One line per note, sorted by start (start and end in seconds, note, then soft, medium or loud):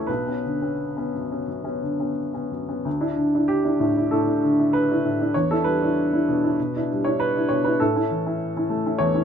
0.00 0.11 E2 soft
0.00 0.11 E3 soft
0.00 0.10 A3 soft
0.00 0.10 C#4 soft
0.00 0.11 E4 soft
0.00 0.11 G4 medium
0.00 0.10 A4 medium
0.07 0.25 B1 soft
0.07 2.17 B4 medium
0.27 0.42 B3 soft
0.27 0.43 C#4 soft
0.45 0.72 D3 soft
0.62 0.93 B3 soft
0.62 0.93 C#4 soft
0.97 1.12 B3 soft
0.97 1.12 C#4 soft
1.15 1.41 F#2 soft
1.31 1.46 B3 soft
1.31 1.47 C#4 soft
1.48 1.64 F#2 soft
1.64 1.81 B3 soft
1.64 1.80 C#4 soft
1.82 2.10 D3 soft
2.00 2.31 B3 soft
2.00 2.31 C#4 soft
2.34 2.50 B3 soft
2.34 2.50 C#4 soft
2.51 2.79 F#2 soft
2.69 2.84 B3 soft
2.69 2.84 C#4 soft
2.85 3.01 D2 soft
3.01 3.16 D4 soft
3.01 3.16 E4 soft
3.16 3.43 D3 soft
3.35 3.63 D4 soft
3.35 3.63 E4 soft
3.48 4.11 G4 medium
3.65 3.79 D4 soft
3.65 3.79 E4 soft
3.80 4.05 A2 soft
3.97 4.10 D4 soft
3.97 4.10 E4 soft
4.11 4.27 A2 soft
4.11 4.72 A4 medium
4.27 4.41 D4 soft
4.27 4.41 E4 soft
4.43 4.67 D3 soft
4.60 4.86 D4 soft
4.60 4.86 E4 soft
4.73 5.34 B4 medium
4.91 5.03 D4 soft
4.91 5.04 E4 soft
5.05 5.28 A2 soft
5.21 5.34 D4 soft
5.21 5.33 E4 soft
5.34 5.50 E2 soft
5.34 5.49 C#5 medium
5.51 5.64 D4 soft
5.51 5.64 E4 soft
5.51 5.65 A4 medium
5.64 5.90 G3 soft
5.64 7.03 B4 medium
5.82 6.09 D4 soft
5.82 6.09 E4 soft
6.13 6.26 D4 soft
6.13 6.26 E4 soft
6.28 6.52 B2 soft
6.44 6.57 D4 soft
6.44 6.57 E4 soft
6.60 6.74 B2 soft
6.76 6.88 D4 soft
6.76 6.88 E4 soft
6.92 7.14 G3 soft
7.04 7.32 D4 soft
7.04 7.32 E4 soft
7.04 7.19 C#5 medium
7.20 7.49 B4 medium
7.36 7.49 D4 soft
7.36 7.49 E4 soft
7.49 7.74 B2 soft
7.49 7.64 C#5 medium
7.64 7.78 D4 soft
7.64 7.78 E4 soft
7.64 7.79 B4 medium
7.80 7.95 A2 soft
7.80 9.00 A4 medium
7.96 8.09 C#4 soft
7.96 8.09 E4 soft
8.11 8.34 E3 soft
8.26 8.52 C#4 soft
8.26 8.53 E4 soft
8.57 8.69 C#4 soft
8.57 8.69 E4 soft
8.70 8.94 A3 soft
8.86 8.99 C#4 soft
8.86 8.99 E4 soft
8.98 9.14 E2 soft
8.98 9.24 C#5 medium
9.15 9.24 C#4 soft
9.15 9.24 E4 soft